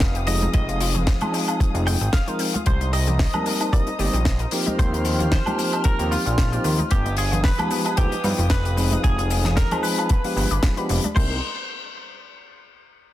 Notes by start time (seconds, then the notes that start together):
Already playing: F1 B4 F5 G#5 D#6
0.00 B3, kick, snare, closed hi-hat, cabasa
0.15 G4, closed hi-hat, cabasa
0.27 F3 G#3 B3 C4 D#4 G#4 D#5, open hi-hat, cabasa
0.41 D#4, closed hi-hat, high bongo, high conga, cabasa
0.54 F1 C4 G#4 D#5, kick, closed hi-hat, cabasa
0.69 F4, closed hi-hat, high bongo, cabasa
0.80 F4, open hi-hat, high bongo, cabasa
0.94 G#4, closed hi-hat, low conga, cabasa
1.07 C4, kick, snare, closed hi-hat, cabasa
1.21 F3 G#3 C4 D#4 G#4 C5, closed hi-hat, high conga, low conga, cabasa, high woodblock
1.34 C4, open hi-hat, cabasa
1.48 F4, closed hi-hat, cabasa, high woodblock
1.60 C4, kick, closed hi-hat, cabasa
1.74 F1 F3 G#3 C4 D#4 F4 G#4, closed hi-hat, cabasa
1.87 F1 F4 G5, open hi-hat, high bongo, high conga, cabasa
2.01 G#1 G#4, closed hi-hat, cabasa
2.13 C4 F5, kick, snare, closed hi-hat, cabasa
2.27 F3 G#3 C4 D#4 A#4 C5, closed hi-hat, cabasa
2.39 C4, open hi-hat, cabasa
2.54 F4, closed hi-hat, high bongo, high conga, cabasa
2.66 C2 A#3 C5 A#5 D#6, kick, closed hi-hat, cabasa
2.81 D#4, closed hi-hat, high bongo, cabasa
2.93 G4 D#5, open hi-hat, cabasa
3.07 G4, closed hi-hat, low conga, cabasa
3.19 A#3, kick, snare, open hi-hat, cabasa
3.33 G3 A#3 C4 D#4 A#4, closed hi-hat, high conga, low conga, cabasa, high woodblock
3.46 A#3, open hi-hat, cabasa
3.60 D#4, closed hi-hat, cabasa, high woodblock
3.72 G1 G3 A#3 C4 D#4 A#4 D#5, kick, closed hi-hat, cabasa
3.87 D#4, closed hi-hat, high bongo, cabasa
3.99 G1 G3 A#3 C4 D#4 G4 D5, open hi-hat, high conga, cabasa
4.13 A#1 G4, closed hi-hat, cabasa
4.25 A#3, kick, snare, closed hi-hat, cabasa
4.39 A#4, closed hi-hat, cabasa
4.51 F3 A#3 C4 D#4 G4 G5 F6, open hi-hat, cabasa
4.66 D#4, closed hi-hat, high bongo, high conga, cabasa
4.78 D#2 A#3 C5, kick, closed hi-hat, cabasa
4.93 D#4, closed hi-hat, high bongo, cabasa
5.05 F4, open hi-hat, high bongo, cabasa
5.19 F4, closed hi-hat, low conga, cabasa
5.31 A#3 C5, kick, snare, closed hi-hat, cabasa
5.46 F3 A#3 C4 D#4 G4, closed hi-hat, high conga, low conga, cabasa, high woodblock
5.58 A#3, open hi-hat, cabasa
5.72 D#4, closed hi-hat, cabasa, high woodblock
5.84 A#3 A#4, kick, closed hi-hat, cabasa
5.99 D#2 F3 A#3 C4 D#4 G4, closed hi-hat, cabasa
6.11 F4, open hi-hat, high bongo, high conga, cabasa
6.26 A#1 F4, closed hi-hat, cabasa
6.38 F3 A#3 C4 D#4 A#4, kick, snare, closed hi-hat, cabasa
6.52 F3 A#3 C4 D#4 G4, closed hi-hat, cabasa
6.64 D#2 A#3, open hi-hat, cabasa
6.78 D#4, closed hi-hat, high bongo, high conga, cabasa
6.91 G1 B3 G4 B4 F5 G#5 D#6, kick, closed hi-hat, cabasa
7.05 D#4, closed hi-hat, high bongo, cabasa
7.17 F4 G#4, open hi-hat, cabasa
7.32 F4, closed hi-hat, low conga, cabasa
7.44 B3 B4, kick, snare, open hi-hat, cabasa
7.58 F3 G#3 B3 D#4 G4, closed hi-hat, high conga, low conga, cabasa, high woodblock
7.71 B3, open hi-hat, cabasa
7.85 D#4, closed hi-hat, cabasa, high woodblock
7.97 D2 F3 G#3 B3 D#4 G4, kick, closed hi-hat, cabasa
8.12 D#4, closed hi-hat, high bongo, cabasa
8.24 G2 F3 G#3 B3 D#4 F4 B4, open hi-hat, high conga, cabasa
8.38 F1 F4, closed hi-hat, cabasa
8.50 B3 B4, kick, snare, closed hi-hat, cabasa
8.65 G4, closed hi-hat, cabasa
8.77 F3 G#3 B3 C4 D#4 G#4, open hi-hat, cabasa
8.92 D#4, closed hi-hat, high bongo, high conga, cabasa
9.04 F1 C4 G#4, kick, closed hi-hat, cabasa
9.18 F4, closed hi-hat, high bongo, cabasa
9.30 G#4, open hi-hat, high bongo, cabasa
9.44 G#4, snare, closed hi-hat, low conga, cabasa
9.57 C4 A#4, kick, snare, closed hi-hat, cabasa
9.71 F3 G#3 C4 D#4 G#4 C5, closed hi-hat, high conga, low conga, cabasa, high woodblock
9.83 C4 B4, open hi-hat, cabasa
9.98 F4, closed hi-hat, cabasa, high woodblock
10.09 B3 B5, kick, closed hi-hat, cabasa
10.24 F3 G#3 B3 D4 F4 G4, open hi-hat, cabasa
10.36 G1 B3, open hi-hat, high bongo, high conga, cabasa
10.51 G1 D5, closed hi-hat, cabasa
10.62 F3 G#3 B3 D4 F4 G#4, kick, snare, closed hi-hat, cabasa
10.77 F3 G#3 B3 D4 G4 B4, closed hi-hat, cabasa
10.89 F1 F4, open hi-hat, cabasa
11.04 D4, closed hi-hat, high bongo, high conga, cabasa
11.15 C2 G3 A#3 C4 D#4 A#4 C5 D#5 C6, kick, crash